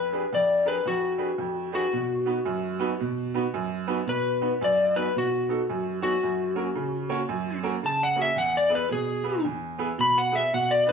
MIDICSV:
0, 0, Header, 1, 3, 480
1, 0, Start_track
1, 0, Tempo, 536673
1, 1731, Time_signature, 4, 2, 24, 8
1, 9770, End_track
2, 0, Start_track
2, 0, Title_t, "Electric slide guitar"
2, 0, Program_c, 0, 29
2, 0, Note_on_c, 0, 71, 103
2, 288, Note_off_c, 0, 71, 0
2, 309, Note_on_c, 0, 74, 86
2, 594, Note_off_c, 0, 74, 0
2, 606, Note_on_c, 0, 71, 82
2, 772, Note_off_c, 0, 71, 0
2, 783, Note_on_c, 0, 66, 83
2, 1536, Note_off_c, 0, 66, 0
2, 1564, Note_on_c, 0, 66, 95
2, 2963, Note_off_c, 0, 66, 0
2, 3659, Note_on_c, 0, 71, 105
2, 4120, Note_off_c, 0, 71, 0
2, 4153, Note_on_c, 0, 74, 90
2, 4436, Note_off_c, 0, 74, 0
2, 4439, Note_on_c, 0, 71, 81
2, 4608, Note_off_c, 0, 71, 0
2, 4635, Note_on_c, 0, 66, 80
2, 5383, Note_off_c, 0, 66, 0
2, 5395, Note_on_c, 0, 66, 100
2, 6800, Note_off_c, 0, 66, 0
2, 7028, Note_on_c, 0, 81, 100
2, 7176, Note_off_c, 0, 81, 0
2, 7185, Note_on_c, 0, 78, 88
2, 7334, Note_off_c, 0, 78, 0
2, 7348, Note_on_c, 0, 76, 98
2, 7496, Note_off_c, 0, 76, 0
2, 7496, Note_on_c, 0, 78, 93
2, 7650, Note_off_c, 0, 78, 0
2, 7666, Note_on_c, 0, 74, 94
2, 7815, Note_off_c, 0, 74, 0
2, 7827, Note_on_c, 0, 71, 86
2, 7976, Note_off_c, 0, 71, 0
2, 7982, Note_on_c, 0, 68, 106
2, 8444, Note_off_c, 0, 68, 0
2, 8950, Note_on_c, 0, 83, 112
2, 9098, Note_off_c, 0, 83, 0
2, 9104, Note_on_c, 0, 78, 87
2, 9255, Note_off_c, 0, 78, 0
2, 9260, Note_on_c, 0, 76, 84
2, 9413, Note_off_c, 0, 76, 0
2, 9429, Note_on_c, 0, 78, 95
2, 9577, Note_off_c, 0, 78, 0
2, 9578, Note_on_c, 0, 74, 95
2, 9732, Note_off_c, 0, 74, 0
2, 9738, Note_on_c, 0, 71, 92
2, 9770, Note_off_c, 0, 71, 0
2, 9770, End_track
3, 0, Start_track
3, 0, Title_t, "Upright piano"
3, 0, Program_c, 1, 0
3, 0, Note_on_c, 1, 41, 65
3, 112, Note_on_c, 1, 68, 68
3, 114, Note_on_c, 1, 62, 68
3, 117, Note_on_c, 1, 67, 70
3, 122, Note_on_c, 1, 71, 73
3, 191, Note_off_c, 1, 41, 0
3, 202, Note_off_c, 1, 68, 0
3, 203, Note_off_c, 1, 62, 0
3, 204, Note_off_c, 1, 67, 0
3, 207, Note_off_c, 1, 71, 0
3, 292, Note_on_c, 1, 41, 67
3, 585, Note_on_c, 1, 67, 61
3, 587, Note_on_c, 1, 62, 70
3, 588, Note_on_c, 1, 68, 70
3, 591, Note_on_c, 1, 70, 85
3, 672, Note_off_c, 1, 41, 0
3, 678, Note_off_c, 1, 67, 0
3, 679, Note_off_c, 1, 62, 0
3, 680, Note_off_c, 1, 68, 0
3, 681, Note_off_c, 1, 70, 0
3, 766, Note_on_c, 1, 41, 65
3, 1056, Note_on_c, 1, 67, 68
3, 1058, Note_on_c, 1, 68, 63
3, 1059, Note_on_c, 1, 62, 73
3, 1064, Note_on_c, 1, 71, 78
3, 1148, Note_off_c, 1, 41, 0
3, 1154, Note_off_c, 1, 67, 0
3, 1154, Note_off_c, 1, 68, 0
3, 1155, Note_off_c, 1, 62, 0
3, 1157, Note_off_c, 1, 71, 0
3, 1237, Note_on_c, 1, 41, 71
3, 1543, Note_on_c, 1, 62, 69
3, 1544, Note_on_c, 1, 67, 61
3, 1547, Note_on_c, 1, 68, 65
3, 1548, Note_on_c, 1, 71, 75
3, 1624, Note_off_c, 1, 41, 0
3, 1636, Note_off_c, 1, 62, 0
3, 1637, Note_off_c, 1, 67, 0
3, 1639, Note_off_c, 1, 68, 0
3, 1639, Note_off_c, 1, 71, 0
3, 1724, Note_on_c, 1, 47, 72
3, 2020, Note_on_c, 1, 59, 77
3, 2023, Note_on_c, 1, 63, 62
3, 2026, Note_on_c, 1, 66, 63
3, 2027, Note_on_c, 1, 71, 82
3, 2108, Note_off_c, 1, 47, 0
3, 2115, Note_off_c, 1, 59, 0
3, 2117, Note_off_c, 1, 63, 0
3, 2118, Note_off_c, 1, 66, 0
3, 2119, Note_off_c, 1, 71, 0
3, 2196, Note_on_c, 1, 42, 84
3, 2499, Note_on_c, 1, 59, 89
3, 2504, Note_on_c, 1, 66, 82
3, 2508, Note_on_c, 1, 63, 79
3, 2508, Note_on_c, 1, 71, 99
3, 2583, Note_off_c, 1, 42, 0
3, 2594, Note_off_c, 1, 59, 0
3, 2597, Note_off_c, 1, 66, 0
3, 2599, Note_off_c, 1, 63, 0
3, 2599, Note_off_c, 1, 71, 0
3, 2687, Note_on_c, 1, 47, 84
3, 2991, Note_on_c, 1, 59, 84
3, 2992, Note_on_c, 1, 63, 74
3, 2999, Note_on_c, 1, 66, 83
3, 2999, Note_on_c, 1, 71, 95
3, 3069, Note_off_c, 1, 47, 0
3, 3080, Note_off_c, 1, 59, 0
3, 3081, Note_off_c, 1, 63, 0
3, 3084, Note_off_c, 1, 66, 0
3, 3085, Note_off_c, 1, 71, 0
3, 3166, Note_on_c, 1, 42, 87
3, 3465, Note_on_c, 1, 59, 87
3, 3467, Note_on_c, 1, 63, 77
3, 3467, Note_on_c, 1, 66, 76
3, 3469, Note_on_c, 1, 71, 96
3, 3549, Note_off_c, 1, 42, 0
3, 3557, Note_off_c, 1, 59, 0
3, 3558, Note_off_c, 1, 66, 0
3, 3559, Note_off_c, 1, 63, 0
3, 3560, Note_off_c, 1, 71, 0
3, 3635, Note_on_c, 1, 47, 71
3, 3949, Note_on_c, 1, 59, 72
3, 3950, Note_on_c, 1, 63, 70
3, 3952, Note_on_c, 1, 66, 67
3, 3952, Note_on_c, 1, 71, 81
3, 4022, Note_off_c, 1, 47, 0
3, 4039, Note_off_c, 1, 59, 0
3, 4040, Note_off_c, 1, 63, 0
3, 4041, Note_off_c, 1, 66, 0
3, 4041, Note_off_c, 1, 71, 0
3, 4127, Note_on_c, 1, 42, 73
3, 4436, Note_on_c, 1, 59, 70
3, 4437, Note_on_c, 1, 63, 65
3, 4439, Note_on_c, 1, 66, 63
3, 4444, Note_on_c, 1, 71, 78
3, 4509, Note_off_c, 1, 42, 0
3, 4523, Note_off_c, 1, 59, 0
3, 4524, Note_off_c, 1, 63, 0
3, 4524, Note_off_c, 1, 66, 0
3, 4527, Note_off_c, 1, 71, 0
3, 4612, Note_on_c, 1, 47, 67
3, 4911, Note_on_c, 1, 59, 68
3, 4912, Note_on_c, 1, 63, 63
3, 4918, Note_on_c, 1, 69, 76
3, 4919, Note_on_c, 1, 66, 63
3, 4992, Note_off_c, 1, 47, 0
3, 5001, Note_off_c, 1, 59, 0
3, 5001, Note_off_c, 1, 63, 0
3, 5004, Note_off_c, 1, 69, 0
3, 5005, Note_off_c, 1, 66, 0
3, 5094, Note_on_c, 1, 42, 72
3, 5385, Note_on_c, 1, 63, 62
3, 5386, Note_on_c, 1, 66, 66
3, 5388, Note_on_c, 1, 59, 68
3, 5391, Note_on_c, 1, 73, 74
3, 5473, Note_off_c, 1, 42, 0
3, 5478, Note_off_c, 1, 63, 0
3, 5478, Note_off_c, 1, 66, 0
3, 5479, Note_off_c, 1, 59, 0
3, 5481, Note_off_c, 1, 73, 0
3, 5575, Note_on_c, 1, 42, 71
3, 5865, Note_on_c, 1, 61, 70
3, 5866, Note_on_c, 1, 58, 72
3, 5866, Note_on_c, 1, 66, 67
3, 5870, Note_on_c, 1, 70, 79
3, 5954, Note_off_c, 1, 42, 0
3, 5958, Note_off_c, 1, 61, 0
3, 5959, Note_off_c, 1, 58, 0
3, 5959, Note_off_c, 1, 66, 0
3, 5961, Note_off_c, 1, 70, 0
3, 6040, Note_on_c, 1, 49, 82
3, 6345, Note_on_c, 1, 61, 76
3, 6347, Note_on_c, 1, 58, 85
3, 6349, Note_on_c, 1, 73, 95
3, 6350, Note_on_c, 1, 66, 79
3, 6426, Note_off_c, 1, 49, 0
3, 6438, Note_off_c, 1, 61, 0
3, 6439, Note_off_c, 1, 58, 0
3, 6440, Note_off_c, 1, 73, 0
3, 6441, Note_off_c, 1, 66, 0
3, 6519, Note_on_c, 1, 42, 82
3, 6828, Note_on_c, 1, 61, 76
3, 6830, Note_on_c, 1, 58, 87
3, 6834, Note_on_c, 1, 66, 78
3, 6834, Note_on_c, 1, 70, 87
3, 6906, Note_off_c, 1, 42, 0
3, 6920, Note_off_c, 1, 61, 0
3, 6921, Note_off_c, 1, 58, 0
3, 6923, Note_off_c, 1, 66, 0
3, 6923, Note_off_c, 1, 70, 0
3, 7003, Note_on_c, 1, 49, 70
3, 7298, Note_on_c, 1, 58, 67
3, 7302, Note_on_c, 1, 61, 62
3, 7304, Note_on_c, 1, 66, 68
3, 7305, Note_on_c, 1, 68, 78
3, 7388, Note_off_c, 1, 49, 0
3, 7395, Note_off_c, 1, 58, 0
3, 7397, Note_off_c, 1, 61, 0
3, 7398, Note_off_c, 1, 66, 0
3, 7399, Note_off_c, 1, 68, 0
3, 7476, Note_on_c, 1, 40, 68
3, 7777, Note_on_c, 1, 64, 63
3, 7778, Note_on_c, 1, 59, 75
3, 7779, Note_on_c, 1, 68, 66
3, 7780, Note_on_c, 1, 71, 84
3, 7865, Note_off_c, 1, 40, 0
3, 7875, Note_off_c, 1, 59, 0
3, 7875, Note_off_c, 1, 64, 0
3, 7876, Note_off_c, 1, 68, 0
3, 7877, Note_off_c, 1, 71, 0
3, 7965, Note_on_c, 1, 47, 68
3, 8263, Note_on_c, 1, 59, 74
3, 8264, Note_on_c, 1, 64, 69
3, 8268, Note_on_c, 1, 71, 77
3, 8269, Note_on_c, 1, 68, 65
3, 8350, Note_off_c, 1, 47, 0
3, 8358, Note_off_c, 1, 59, 0
3, 8359, Note_off_c, 1, 64, 0
3, 8361, Note_off_c, 1, 68, 0
3, 8361, Note_off_c, 1, 71, 0
3, 8450, Note_on_c, 1, 40, 72
3, 8752, Note_on_c, 1, 59, 83
3, 8757, Note_on_c, 1, 68, 78
3, 8758, Note_on_c, 1, 71, 90
3, 8759, Note_on_c, 1, 64, 80
3, 8833, Note_off_c, 1, 40, 0
3, 8843, Note_off_c, 1, 59, 0
3, 8845, Note_off_c, 1, 68, 0
3, 8846, Note_off_c, 1, 71, 0
3, 8847, Note_off_c, 1, 64, 0
3, 8930, Note_on_c, 1, 47, 77
3, 9228, Note_on_c, 1, 59, 68
3, 9232, Note_on_c, 1, 71, 82
3, 9233, Note_on_c, 1, 64, 66
3, 9235, Note_on_c, 1, 68, 67
3, 9313, Note_off_c, 1, 47, 0
3, 9322, Note_off_c, 1, 59, 0
3, 9324, Note_off_c, 1, 64, 0
3, 9324, Note_off_c, 1, 71, 0
3, 9325, Note_off_c, 1, 68, 0
3, 9421, Note_on_c, 1, 47, 73
3, 9716, Note_on_c, 1, 59, 74
3, 9718, Note_on_c, 1, 63, 69
3, 9722, Note_on_c, 1, 66, 66
3, 9725, Note_on_c, 1, 71, 78
3, 9770, Note_off_c, 1, 47, 0
3, 9770, Note_off_c, 1, 59, 0
3, 9770, Note_off_c, 1, 63, 0
3, 9770, Note_off_c, 1, 66, 0
3, 9770, Note_off_c, 1, 71, 0
3, 9770, End_track
0, 0, End_of_file